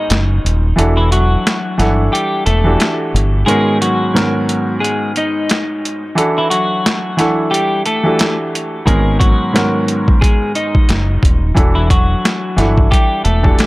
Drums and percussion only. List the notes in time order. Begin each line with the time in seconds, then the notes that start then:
0.10 snare, closed hi-hat
0.46 closed hi-hat
0.79 closed hi-hat
1.12 closed hi-hat
1.47 snare, closed hi-hat
1.79 snare, closed hi-hat
2.15 closed hi-hat
2.46 closed hi-hat
2.80 snare, closed hi-hat
3.16 closed hi-hat
3.48 closed hi-hat
3.82 closed hi-hat
4.17 snare, closed hi-hat
4.49 closed hi-hat
4.84 closed hi-hat
5.16 closed hi-hat
5.49 snare, closed hi-hat
5.85 closed hi-hat
6.18 closed hi-hat
6.51 closed hi-hat
6.86 snare, closed hi-hat
7.19 snare, closed hi-hat
7.54 closed hi-hat
7.86 closed hi-hat
8.19 snare, closed hi-hat
8.55 closed hi-hat
8.87 kick, closed hi-hat
9.21 kick, closed hi-hat
9.56 snare, closed hi-hat
9.88 closed hi-hat
10.08 kick
10.22 kick, closed hi-hat
10.55 closed hi-hat
10.75 kick
10.89 snare, closed hi-hat
11.23 kick, closed hi-hat
11.57 kick, closed hi-hat
11.90 kick, closed hi-hat
12.25 snare, closed hi-hat
12.58 snare, closed hi-hat
12.78 kick
12.92 kick, closed hi-hat
13.25 closed hi-hat
13.44 kick
13.59 snare, closed hi-hat